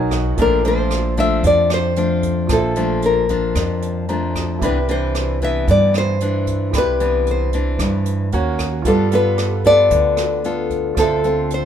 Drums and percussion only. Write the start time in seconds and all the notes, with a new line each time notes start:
0.11 kick, cross-stick, closed hi-hat
0.38 kick, closed hi-hat
0.64 closed hi-hat
0.91 cross-stick, closed hi-hat
1.17 kick, closed hi-hat
1.44 kick, closed hi-hat
1.70 cross-stick, closed hi-hat
1.96 closed hi-hat
2.23 kick, closed hi-hat
2.49 kick, cross-stick, closed hi-hat
2.76 closed hi-hat
3.02 closed hi-hat
3.29 kick, closed hi-hat
3.55 kick, cross-stick, closed hi-hat
3.82 closed hi-hat
4.08 closed hi-hat
4.35 kick, cross-stick, closed hi-hat
4.62 kick, closed hi-hat
4.88 closed hi-hat
5.15 cross-stick, closed hi-hat
5.41 kick, closed hi-hat
5.68 kick, closed hi-hat
5.94 cross-stick, closed hi-hat
6.20 closed hi-hat
6.47 kick, closed hi-hat
6.73 kick, cross-stick, closed hi-hat
7.00 closed hi-hat
7.27 closed hi-hat
7.53 kick, closed hi-hat
7.79 kick, cross-stick, closed hi-hat
8.06 closed hi-hat
8.32 closed hi-hat
8.59 kick, cross-stick, closed hi-hat
8.85 kick, closed hi-hat
9.11 closed hi-hat
9.38 cross-stick, closed hi-hat
9.64 kick, closed hi-hat
9.91 kick, closed hi-hat
10.17 cross-stick, closed hi-hat
10.44 closed hi-hat
10.70 kick, closed hi-hat
10.97 kick, cross-stick, closed hi-hat
11.24 closed hi-hat
11.50 closed hi-hat